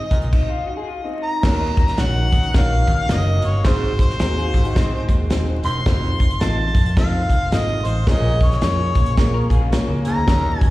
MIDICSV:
0, 0, Header, 1, 8, 480
1, 0, Start_track
1, 0, Tempo, 552486
1, 1250, Time_signature, 4, 2, 24, 8
1, 9299, End_track
2, 0, Start_track
2, 0, Title_t, "Harmonica"
2, 0, Program_c, 0, 22
2, 0, Note_on_c, 0, 75, 83
2, 251, Note_off_c, 0, 75, 0
2, 1066, Note_on_c, 0, 82, 102
2, 1741, Note_on_c, 0, 78, 98
2, 1754, Note_off_c, 0, 82, 0
2, 2220, Note_on_c, 0, 77, 98
2, 2233, Note_off_c, 0, 78, 0
2, 2697, Note_off_c, 0, 77, 0
2, 2708, Note_on_c, 0, 75, 96
2, 2971, Note_off_c, 0, 75, 0
2, 2998, Note_on_c, 0, 73, 82
2, 3185, Note_on_c, 0, 72, 91
2, 3198, Note_off_c, 0, 73, 0
2, 3469, Note_off_c, 0, 72, 0
2, 3481, Note_on_c, 0, 72, 87
2, 4397, Note_off_c, 0, 72, 0
2, 4910, Note_on_c, 0, 84, 113
2, 5578, Note_on_c, 0, 81, 108
2, 5591, Note_off_c, 0, 84, 0
2, 6054, Note_off_c, 0, 81, 0
2, 6059, Note_on_c, 0, 77, 96
2, 6542, Note_on_c, 0, 75, 106
2, 6555, Note_off_c, 0, 77, 0
2, 6828, Note_on_c, 0, 72, 91
2, 6841, Note_off_c, 0, 75, 0
2, 7014, Note_off_c, 0, 72, 0
2, 7032, Note_on_c, 0, 75, 98
2, 7291, Note_off_c, 0, 75, 0
2, 7321, Note_on_c, 0, 73, 89
2, 8233, Note_off_c, 0, 73, 0
2, 8743, Note_on_c, 0, 82, 105
2, 9203, Note_off_c, 0, 82, 0
2, 9203, Note_on_c, 0, 80, 105
2, 9299, Note_off_c, 0, 80, 0
2, 9299, End_track
3, 0, Start_track
3, 0, Title_t, "Upright piano"
3, 0, Program_c, 1, 0
3, 0, Note_on_c, 1, 56, 63
3, 0, Note_on_c, 1, 60, 58
3, 0, Note_on_c, 1, 63, 60
3, 0, Note_on_c, 1, 68, 73
3, 126, Note_off_c, 1, 56, 0
3, 128, Note_off_c, 1, 63, 0
3, 129, Note_off_c, 1, 60, 0
3, 131, Note_off_c, 1, 68, 0
3, 1245, Note_on_c, 1, 61, 92
3, 1248, Note_on_c, 1, 63, 88
3, 1250, Note_on_c, 1, 66, 80
3, 1250, Note_on_c, 1, 73, 106
3, 1251, Note_on_c, 1, 70, 88
3, 1571, Note_off_c, 1, 61, 0
3, 1572, Note_off_c, 1, 63, 0
3, 1573, Note_off_c, 1, 66, 0
3, 1573, Note_off_c, 1, 70, 0
3, 1573, Note_off_c, 1, 73, 0
3, 1729, Note_on_c, 1, 61, 70
3, 1731, Note_on_c, 1, 63, 63
3, 1734, Note_on_c, 1, 73, 79
3, 1735, Note_on_c, 1, 70, 66
3, 1737, Note_on_c, 1, 66, 65
3, 2053, Note_off_c, 1, 61, 0
3, 2054, Note_off_c, 1, 63, 0
3, 2056, Note_off_c, 1, 70, 0
3, 2056, Note_off_c, 1, 73, 0
3, 2057, Note_off_c, 1, 66, 0
3, 2211, Note_on_c, 1, 61, 81
3, 2215, Note_on_c, 1, 66, 68
3, 2216, Note_on_c, 1, 63, 74
3, 2218, Note_on_c, 1, 70, 67
3, 2218, Note_on_c, 1, 73, 83
3, 2534, Note_off_c, 1, 61, 0
3, 2536, Note_off_c, 1, 66, 0
3, 2537, Note_off_c, 1, 63, 0
3, 2538, Note_off_c, 1, 70, 0
3, 2538, Note_off_c, 1, 73, 0
3, 2703, Note_on_c, 1, 63, 68
3, 2706, Note_on_c, 1, 61, 70
3, 2708, Note_on_c, 1, 70, 68
3, 2709, Note_on_c, 1, 73, 82
3, 2711, Note_on_c, 1, 66, 64
3, 3020, Note_off_c, 1, 63, 0
3, 3022, Note_off_c, 1, 61, 0
3, 3023, Note_off_c, 1, 70, 0
3, 3023, Note_off_c, 1, 73, 0
3, 3024, Note_off_c, 1, 66, 0
3, 3181, Note_on_c, 1, 60, 92
3, 3181, Note_on_c, 1, 63, 88
3, 3182, Note_on_c, 1, 66, 83
3, 3182, Note_on_c, 1, 68, 81
3, 3185, Note_on_c, 1, 72, 103
3, 3499, Note_off_c, 1, 60, 0
3, 3499, Note_off_c, 1, 63, 0
3, 3500, Note_off_c, 1, 66, 0
3, 3500, Note_off_c, 1, 68, 0
3, 3502, Note_off_c, 1, 72, 0
3, 3655, Note_on_c, 1, 60, 70
3, 3655, Note_on_c, 1, 63, 67
3, 3655, Note_on_c, 1, 66, 67
3, 3657, Note_on_c, 1, 68, 71
3, 3659, Note_on_c, 1, 72, 82
3, 3976, Note_off_c, 1, 60, 0
3, 3976, Note_off_c, 1, 63, 0
3, 3976, Note_off_c, 1, 66, 0
3, 3977, Note_off_c, 1, 68, 0
3, 3978, Note_off_c, 1, 72, 0
3, 4135, Note_on_c, 1, 60, 85
3, 4138, Note_on_c, 1, 63, 83
3, 4138, Note_on_c, 1, 68, 85
3, 4140, Note_on_c, 1, 66, 78
3, 4144, Note_on_c, 1, 72, 103
3, 4456, Note_off_c, 1, 60, 0
3, 4458, Note_off_c, 1, 63, 0
3, 4458, Note_off_c, 1, 68, 0
3, 4459, Note_off_c, 1, 66, 0
3, 4461, Note_off_c, 1, 72, 0
3, 4608, Note_on_c, 1, 60, 88
3, 4612, Note_on_c, 1, 63, 78
3, 4612, Note_on_c, 1, 66, 85
3, 4612, Note_on_c, 1, 68, 81
3, 4614, Note_on_c, 1, 72, 93
3, 4932, Note_off_c, 1, 60, 0
3, 4934, Note_off_c, 1, 66, 0
3, 4935, Note_off_c, 1, 63, 0
3, 4935, Note_off_c, 1, 68, 0
3, 4935, Note_off_c, 1, 72, 0
3, 5090, Note_on_c, 1, 60, 97
3, 5093, Note_on_c, 1, 69, 83
3, 5094, Note_on_c, 1, 65, 91
3, 5095, Note_on_c, 1, 63, 92
3, 5099, Note_on_c, 1, 72, 111
3, 5413, Note_off_c, 1, 60, 0
3, 5415, Note_off_c, 1, 65, 0
3, 5415, Note_off_c, 1, 69, 0
3, 5416, Note_off_c, 1, 63, 0
3, 5418, Note_off_c, 1, 72, 0
3, 5570, Note_on_c, 1, 60, 73
3, 5573, Note_on_c, 1, 63, 68
3, 5573, Note_on_c, 1, 65, 72
3, 5574, Note_on_c, 1, 69, 69
3, 5576, Note_on_c, 1, 75, 75
3, 5893, Note_off_c, 1, 60, 0
3, 5894, Note_off_c, 1, 63, 0
3, 5895, Note_off_c, 1, 65, 0
3, 5895, Note_off_c, 1, 69, 0
3, 5896, Note_off_c, 1, 75, 0
3, 6052, Note_on_c, 1, 60, 80
3, 6052, Note_on_c, 1, 63, 72
3, 6055, Note_on_c, 1, 65, 75
3, 6057, Note_on_c, 1, 69, 74
3, 6058, Note_on_c, 1, 72, 82
3, 6373, Note_off_c, 1, 63, 0
3, 6374, Note_off_c, 1, 60, 0
3, 6375, Note_off_c, 1, 65, 0
3, 6376, Note_off_c, 1, 69, 0
3, 6377, Note_off_c, 1, 72, 0
3, 6531, Note_on_c, 1, 60, 72
3, 6534, Note_on_c, 1, 63, 64
3, 6538, Note_on_c, 1, 65, 68
3, 6539, Note_on_c, 1, 75, 80
3, 6541, Note_on_c, 1, 69, 71
3, 6853, Note_off_c, 1, 60, 0
3, 6854, Note_off_c, 1, 63, 0
3, 6856, Note_off_c, 1, 65, 0
3, 6856, Note_off_c, 1, 75, 0
3, 6857, Note_off_c, 1, 69, 0
3, 7007, Note_on_c, 1, 61, 94
3, 7009, Note_on_c, 1, 65, 86
3, 7011, Note_on_c, 1, 70, 91
3, 7013, Note_on_c, 1, 68, 86
3, 7013, Note_on_c, 1, 73, 111
3, 7330, Note_off_c, 1, 61, 0
3, 7331, Note_off_c, 1, 65, 0
3, 7332, Note_off_c, 1, 70, 0
3, 7333, Note_off_c, 1, 68, 0
3, 7333, Note_off_c, 1, 73, 0
3, 7488, Note_on_c, 1, 61, 73
3, 7489, Note_on_c, 1, 65, 66
3, 7489, Note_on_c, 1, 68, 71
3, 7492, Note_on_c, 1, 70, 66
3, 7494, Note_on_c, 1, 73, 79
3, 7810, Note_off_c, 1, 61, 0
3, 7811, Note_off_c, 1, 65, 0
3, 7811, Note_off_c, 1, 68, 0
3, 7812, Note_off_c, 1, 70, 0
3, 7813, Note_off_c, 1, 73, 0
3, 7973, Note_on_c, 1, 61, 88
3, 7974, Note_on_c, 1, 68, 82
3, 7976, Note_on_c, 1, 65, 78
3, 7977, Note_on_c, 1, 70, 87
3, 7978, Note_on_c, 1, 73, 101
3, 8292, Note_off_c, 1, 61, 0
3, 8293, Note_off_c, 1, 68, 0
3, 8294, Note_off_c, 1, 65, 0
3, 8294, Note_off_c, 1, 70, 0
3, 8295, Note_off_c, 1, 73, 0
3, 8443, Note_on_c, 1, 61, 84
3, 8448, Note_on_c, 1, 65, 83
3, 8449, Note_on_c, 1, 68, 82
3, 8450, Note_on_c, 1, 73, 97
3, 8451, Note_on_c, 1, 70, 83
3, 8767, Note_off_c, 1, 61, 0
3, 8769, Note_off_c, 1, 65, 0
3, 8770, Note_off_c, 1, 68, 0
3, 8770, Note_off_c, 1, 70, 0
3, 8770, Note_off_c, 1, 73, 0
3, 8918, Note_on_c, 1, 61, 96
3, 8918, Note_on_c, 1, 63, 84
3, 8918, Note_on_c, 1, 66, 84
3, 8920, Note_on_c, 1, 73, 105
3, 8921, Note_on_c, 1, 70, 88
3, 9243, Note_off_c, 1, 61, 0
3, 9243, Note_off_c, 1, 63, 0
3, 9243, Note_off_c, 1, 66, 0
3, 9245, Note_off_c, 1, 70, 0
3, 9245, Note_off_c, 1, 73, 0
3, 9299, End_track
4, 0, Start_track
4, 0, Title_t, "Clean electric guitar"
4, 0, Program_c, 2, 27
4, 289, Note_on_c, 2, 63, 65
4, 297, Note_on_c, 2, 60, 59
4, 426, Note_off_c, 2, 63, 0
4, 430, Note_off_c, 2, 60, 0
4, 431, Note_on_c, 2, 65, 80
4, 570, Note_off_c, 2, 65, 0
4, 577, Note_on_c, 2, 63, 60
4, 580, Note_on_c, 2, 66, 64
4, 665, Note_off_c, 2, 66, 0
4, 668, Note_off_c, 2, 63, 0
4, 668, Note_on_c, 2, 68, 78
4, 677, Note_on_c, 2, 65, 68
4, 747, Note_off_c, 2, 65, 0
4, 758, Note_on_c, 2, 65, 75
4, 761, Note_off_c, 2, 68, 0
4, 901, Note_off_c, 2, 65, 0
4, 905, Note_on_c, 2, 63, 71
4, 910, Note_on_c, 2, 60, 59
4, 1229, Note_off_c, 2, 63, 0
4, 1231, Note_off_c, 2, 60, 0
4, 3655, Note_on_c, 2, 70, 77
4, 3661, Note_on_c, 2, 66, 66
4, 3792, Note_off_c, 2, 70, 0
4, 3795, Note_off_c, 2, 66, 0
4, 3800, Note_on_c, 2, 68, 80
4, 3805, Note_on_c, 2, 65, 70
4, 4027, Note_off_c, 2, 68, 0
4, 4030, Note_off_c, 2, 65, 0
4, 4042, Note_on_c, 2, 66, 83
4, 4046, Note_on_c, 2, 63, 69
4, 4127, Note_off_c, 2, 63, 0
4, 4130, Note_off_c, 2, 66, 0
4, 4138, Note_on_c, 2, 60, 73
4, 4141, Note_on_c, 2, 63, 71
4, 4267, Note_off_c, 2, 60, 0
4, 4273, Note_off_c, 2, 63, 0
4, 4278, Note_on_c, 2, 56, 68
4, 4281, Note_on_c, 2, 60, 67
4, 4963, Note_off_c, 2, 56, 0
4, 4963, Note_off_c, 2, 60, 0
4, 8115, Note_on_c, 2, 70, 77
4, 8247, Note_off_c, 2, 70, 0
4, 8250, Note_on_c, 2, 68, 85
4, 8259, Note_on_c, 2, 65, 67
4, 8339, Note_off_c, 2, 65, 0
4, 8344, Note_off_c, 2, 68, 0
4, 8349, Note_on_c, 2, 65, 89
4, 8354, Note_on_c, 2, 61, 74
4, 8434, Note_off_c, 2, 61, 0
4, 8441, Note_off_c, 2, 65, 0
4, 8444, Note_on_c, 2, 61, 88
4, 8449, Note_on_c, 2, 58, 71
4, 8575, Note_off_c, 2, 58, 0
4, 8583, Note_off_c, 2, 61, 0
4, 8586, Note_on_c, 2, 58, 83
4, 8906, Note_off_c, 2, 58, 0
4, 9299, End_track
5, 0, Start_track
5, 0, Title_t, "Tonewheel organ"
5, 0, Program_c, 3, 16
5, 1249, Note_on_c, 3, 58, 61
5, 1249, Note_on_c, 3, 61, 59
5, 1250, Note_on_c, 3, 66, 76
5, 1252, Note_on_c, 3, 51, 68
5, 3153, Note_off_c, 3, 58, 0
5, 3153, Note_off_c, 3, 61, 0
5, 3161, Note_on_c, 3, 60, 60
5, 3167, Note_on_c, 3, 56, 61
5, 5058, Note_off_c, 3, 66, 0
5, 5070, Note_off_c, 3, 56, 0
5, 5100, Note_on_c, 3, 57, 58
5, 5105, Note_on_c, 3, 65, 75
5, 6969, Note_off_c, 3, 60, 0
5, 6976, Note_off_c, 3, 51, 0
5, 6995, Note_off_c, 3, 57, 0
5, 6997, Note_off_c, 3, 65, 0
5, 7009, Note_on_c, 3, 58, 62
5, 7010, Note_on_c, 3, 53, 73
5, 7010, Note_on_c, 3, 61, 64
5, 7010, Note_on_c, 3, 68, 78
5, 8907, Note_off_c, 3, 53, 0
5, 8907, Note_off_c, 3, 68, 0
5, 8927, Note_on_c, 3, 66, 73
5, 8931, Note_on_c, 3, 51, 68
5, 9299, Note_off_c, 3, 51, 0
5, 9299, Note_off_c, 3, 58, 0
5, 9299, Note_off_c, 3, 61, 0
5, 9299, Note_off_c, 3, 66, 0
5, 9299, End_track
6, 0, Start_track
6, 0, Title_t, "Baritone saxophone"
6, 0, Program_c, 4, 67
6, 92, Note_on_c, 4, 46, 67
6, 246, Note_off_c, 4, 46, 0
6, 1243, Note_on_c, 4, 39, 79
6, 1479, Note_off_c, 4, 39, 0
6, 3171, Note_on_c, 4, 44, 91
6, 3404, Note_off_c, 4, 44, 0
6, 4903, Note_on_c, 4, 42, 84
6, 5055, Note_off_c, 4, 42, 0
6, 5092, Note_on_c, 4, 41, 90
6, 5324, Note_off_c, 4, 41, 0
6, 7009, Note_on_c, 4, 46, 93
6, 7241, Note_off_c, 4, 46, 0
6, 8739, Note_on_c, 4, 44, 79
6, 8889, Note_off_c, 4, 44, 0
6, 8924, Note_on_c, 4, 39, 84
6, 9157, Note_off_c, 4, 39, 0
6, 9299, End_track
7, 0, Start_track
7, 0, Title_t, "Picked electric bass"
7, 0, Program_c, 5, 34
7, 96, Note_on_c, 5, 36, 80
7, 179, Note_off_c, 5, 36, 0
7, 199, Note_on_c, 5, 34, 84
7, 279, Note_off_c, 5, 34, 0
7, 1246, Note_on_c, 5, 39, 108
7, 1666, Note_off_c, 5, 39, 0
7, 1730, Note_on_c, 5, 34, 89
7, 1983, Note_off_c, 5, 34, 0
7, 2020, Note_on_c, 5, 51, 97
7, 2186, Note_off_c, 5, 51, 0
7, 2210, Note_on_c, 5, 34, 100
7, 2464, Note_off_c, 5, 34, 0
7, 2496, Note_on_c, 5, 51, 106
7, 2664, Note_off_c, 5, 51, 0
7, 2690, Note_on_c, 5, 30, 98
7, 2944, Note_off_c, 5, 30, 0
7, 2983, Note_on_c, 5, 31, 89
7, 3148, Note_off_c, 5, 31, 0
7, 3169, Note_on_c, 5, 32, 113
7, 3588, Note_off_c, 5, 32, 0
7, 3652, Note_on_c, 5, 39, 89
7, 3905, Note_off_c, 5, 39, 0
7, 3943, Note_on_c, 5, 44, 105
7, 4108, Note_off_c, 5, 44, 0
7, 4138, Note_on_c, 5, 44, 101
7, 4388, Note_off_c, 5, 44, 0
7, 4420, Note_on_c, 5, 39, 96
7, 4586, Note_off_c, 5, 39, 0
7, 4612, Note_on_c, 5, 27, 94
7, 4864, Note_off_c, 5, 27, 0
7, 4902, Note_on_c, 5, 28, 97
7, 5067, Note_off_c, 5, 28, 0
7, 5091, Note_on_c, 5, 29, 108
7, 5508, Note_off_c, 5, 29, 0
7, 5572, Note_on_c, 5, 33, 101
7, 5824, Note_off_c, 5, 33, 0
7, 5863, Note_on_c, 5, 41, 89
7, 6279, Note_off_c, 5, 41, 0
7, 6335, Note_on_c, 5, 29, 92
7, 6502, Note_off_c, 5, 29, 0
7, 6532, Note_on_c, 5, 32, 105
7, 6783, Note_off_c, 5, 32, 0
7, 6815, Note_on_c, 5, 33, 91
7, 6982, Note_off_c, 5, 33, 0
7, 7009, Note_on_c, 5, 34, 108
7, 7426, Note_off_c, 5, 34, 0
7, 7492, Note_on_c, 5, 41, 85
7, 7742, Note_off_c, 5, 41, 0
7, 7778, Note_on_c, 5, 46, 102
7, 7943, Note_off_c, 5, 46, 0
7, 7973, Note_on_c, 5, 46, 112
7, 8223, Note_off_c, 5, 46, 0
7, 8255, Note_on_c, 5, 34, 88
7, 8420, Note_off_c, 5, 34, 0
7, 8589, Note_on_c, 5, 37, 92
7, 8716, Note_off_c, 5, 37, 0
7, 8738, Note_on_c, 5, 37, 102
7, 8820, Note_off_c, 5, 37, 0
7, 8831, Note_on_c, 5, 38, 88
7, 8913, Note_off_c, 5, 38, 0
7, 8926, Note_on_c, 5, 39, 110
7, 9299, Note_off_c, 5, 39, 0
7, 9299, End_track
8, 0, Start_track
8, 0, Title_t, "Drums"
8, 95, Note_on_c, 9, 42, 74
8, 96, Note_on_c, 9, 36, 92
8, 181, Note_off_c, 9, 42, 0
8, 183, Note_off_c, 9, 36, 0
8, 188, Note_on_c, 9, 42, 45
8, 275, Note_off_c, 9, 42, 0
8, 284, Note_on_c, 9, 36, 94
8, 284, Note_on_c, 9, 49, 80
8, 370, Note_off_c, 9, 49, 0
8, 371, Note_off_c, 9, 36, 0
8, 1244, Note_on_c, 9, 49, 96
8, 1245, Note_on_c, 9, 38, 109
8, 1246, Note_on_c, 9, 36, 117
8, 1330, Note_off_c, 9, 49, 0
8, 1332, Note_off_c, 9, 38, 0
8, 1333, Note_off_c, 9, 36, 0
8, 1538, Note_on_c, 9, 42, 75
8, 1541, Note_on_c, 9, 36, 103
8, 1625, Note_off_c, 9, 42, 0
8, 1628, Note_off_c, 9, 36, 0
8, 1632, Note_on_c, 9, 42, 51
8, 1635, Note_on_c, 9, 38, 30
8, 1717, Note_off_c, 9, 42, 0
8, 1717, Note_on_c, 9, 42, 91
8, 1722, Note_off_c, 9, 38, 0
8, 1722, Note_on_c, 9, 38, 103
8, 1803, Note_off_c, 9, 42, 0
8, 1809, Note_off_c, 9, 38, 0
8, 2019, Note_on_c, 9, 36, 100
8, 2020, Note_on_c, 9, 42, 85
8, 2106, Note_off_c, 9, 36, 0
8, 2107, Note_off_c, 9, 42, 0
8, 2112, Note_on_c, 9, 42, 51
8, 2199, Note_off_c, 9, 42, 0
8, 2207, Note_on_c, 9, 42, 84
8, 2210, Note_on_c, 9, 38, 126
8, 2211, Note_on_c, 9, 36, 109
8, 2294, Note_off_c, 9, 42, 0
8, 2296, Note_off_c, 9, 38, 0
8, 2298, Note_off_c, 9, 36, 0
8, 2497, Note_on_c, 9, 36, 94
8, 2498, Note_on_c, 9, 42, 80
8, 2584, Note_off_c, 9, 36, 0
8, 2585, Note_off_c, 9, 42, 0
8, 2684, Note_on_c, 9, 42, 102
8, 2687, Note_on_c, 9, 38, 107
8, 2771, Note_off_c, 9, 42, 0
8, 2774, Note_off_c, 9, 38, 0
8, 2973, Note_on_c, 9, 42, 88
8, 3059, Note_off_c, 9, 42, 0
8, 3167, Note_on_c, 9, 38, 110
8, 3167, Note_on_c, 9, 42, 73
8, 3170, Note_on_c, 9, 36, 113
8, 3254, Note_off_c, 9, 38, 0
8, 3254, Note_off_c, 9, 42, 0
8, 3257, Note_off_c, 9, 36, 0
8, 3466, Note_on_c, 9, 36, 102
8, 3467, Note_on_c, 9, 42, 83
8, 3553, Note_off_c, 9, 36, 0
8, 3553, Note_off_c, 9, 42, 0
8, 3560, Note_on_c, 9, 38, 29
8, 3643, Note_on_c, 9, 42, 97
8, 3647, Note_off_c, 9, 38, 0
8, 3649, Note_on_c, 9, 38, 109
8, 3730, Note_off_c, 9, 42, 0
8, 3735, Note_off_c, 9, 38, 0
8, 3944, Note_on_c, 9, 36, 100
8, 3945, Note_on_c, 9, 42, 77
8, 4031, Note_off_c, 9, 36, 0
8, 4031, Note_off_c, 9, 42, 0
8, 4038, Note_on_c, 9, 42, 54
8, 4125, Note_off_c, 9, 42, 0
8, 4135, Note_on_c, 9, 42, 88
8, 4136, Note_on_c, 9, 36, 101
8, 4137, Note_on_c, 9, 38, 127
8, 4222, Note_off_c, 9, 42, 0
8, 4223, Note_off_c, 9, 36, 0
8, 4224, Note_off_c, 9, 38, 0
8, 4419, Note_on_c, 9, 36, 96
8, 4422, Note_on_c, 9, 42, 78
8, 4506, Note_off_c, 9, 36, 0
8, 4509, Note_off_c, 9, 42, 0
8, 4607, Note_on_c, 9, 42, 95
8, 4610, Note_on_c, 9, 38, 120
8, 4694, Note_off_c, 9, 42, 0
8, 4697, Note_off_c, 9, 38, 0
8, 4896, Note_on_c, 9, 42, 86
8, 4983, Note_off_c, 9, 42, 0
8, 5091, Note_on_c, 9, 36, 119
8, 5093, Note_on_c, 9, 42, 77
8, 5094, Note_on_c, 9, 38, 113
8, 5178, Note_off_c, 9, 36, 0
8, 5180, Note_off_c, 9, 38, 0
8, 5180, Note_off_c, 9, 42, 0
8, 5386, Note_on_c, 9, 36, 106
8, 5387, Note_on_c, 9, 42, 82
8, 5473, Note_off_c, 9, 36, 0
8, 5474, Note_off_c, 9, 42, 0
8, 5479, Note_on_c, 9, 42, 52
8, 5566, Note_off_c, 9, 42, 0
8, 5566, Note_on_c, 9, 42, 99
8, 5571, Note_on_c, 9, 38, 112
8, 5652, Note_off_c, 9, 42, 0
8, 5657, Note_off_c, 9, 38, 0
8, 5862, Note_on_c, 9, 36, 94
8, 5866, Note_on_c, 9, 42, 84
8, 5949, Note_off_c, 9, 36, 0
8, 5953, Note_off_c, 9, 42, 0
8, 5958, Note_on_c, 9, 42, 51
8, 6045, Note_off_c, 9, 42, 0
8, 6054, Note_on_c, 9, 36, 111
8, 6056, Note_on_c, 9, 42, 83
8, 6059, Note_on_c, 9, 38, 126
8, 6141, Note_off_c, 9, 36, 0
8, 6143, Note_off_c, 9, 42, 0
8, 6145, Note_off_c, 9, 38, 0
8, 6338, Note_on_c, 9, 36, 91
8, 6343, Note_on_c, 9, 42, 76
8, 6425, Note_off_c, 9, 36, 0
8, 6430, Note_off_c, 9, 42, 0
8, 6534, Note_on_c, 9, 42, 97
8, 6537, Note_on_c, 9, 38, 117
8, 6621, Note_off_c, 9, 42, 0
8, 6624, Note_off_c, 9, 38, 0
8, 6818, Note_on_c, 9, 42, 95
8, 6905, Note_off_c, 9, 42, 0
8, 7010, Note_on_c, 9, 36, 119
8, 7013, Note_on_c, 9, 42, 79
8, 7014, Note_on_c, 9, 38, 120
8, 7097, Note_off_c, 9, 36, 0
8, 7100, Note_off_c, 9, 42, 0
8, 7101, Note_off_c, 9, 38, 0
8, 7304, Note_on_c, 9, 36, 101
8, 7306, Note_on_c, 9, 42, 79
8, 7391, Note_off_c, 9, 36, 0
8, 7393, Note_off_c, 9, 42, 0
8, 7397, Note_on_c, 9, 42, 53
8, 7400, Note_on_c, 9, 38, 31
8, 7484, Note_off_c, 9, 42, 0
8, 7484, Note_on_c, 9, 42, 95
8, 7487, Note_off_c, 9, 38, 0
8, 7489, Note_on_c, 9, 38, 105
8, 7571, Note_off_c, 9, 42, 0
8, 7576, Note_off_c, 9, 38, 0
8, 7778, Note_on_c, 9, 42, 82
8, 7779, Note_on_c, 9, 36, 99
8, 7865, Note_off_c, 9, 42, 0
8, 7866, Note_off_c, 9, 36, 0
8, 7872, Note_on_c, 9, 42, 55
8, 7959, Note_off_c, 9, 42, 0
8, 7969, Note_on_c, 9, 42, 83
8, 7972, Note_on_c, 9, 36, 100
8, 7972, Note_on_c, 9, 38, 121
8, 8056, Note_off_c, 9, 42, 0
8, 8058, Note_off_c, 9, 36, 0
8, 8058, Note_off_c, 9, 38, 0
8, 8256, Note_on_c, 9, 36, 90
8, 8261, Note_on_c, 9, 42, 80
8, 8342, Note_off_c, 9, 36, 0
8, 8348, Note_off_c, 9, 42, 0
8, 8448, Note_on_c, 9, 42, 105
8, 8452, Note_on_c, 9, 38, 119
8, 8535, Note_off_c, 9, 42, 0
8, 8538, Note_off_c, 9, 38, 0
8, 8730, Note_on_c, 9, 42, 90
8, 8817, Note_off_c, 9, 42, 0
8, 8928, Note_on_c, 9, 36, 116
8, 8928, Note_on_c, 9, 42, 72
8, 8929, Note_on_c, 9, 38, 115
8, 9015, Note_off_c, 9, 36, 0
8, 9015, Note_off_c, 9, 42, 0
8, 9016, Note_off_c, 9, 38, 0
8, 9221, Note_on_c, 9, 36, 108
8, 9221, Note_on_c, 9, 42, 79
8, 9299, Note_off_c, 9, 36, 0
8, 9299, Note_off_c, 9, 42, 0
8, 9299, End_track
0, 0, End_of_file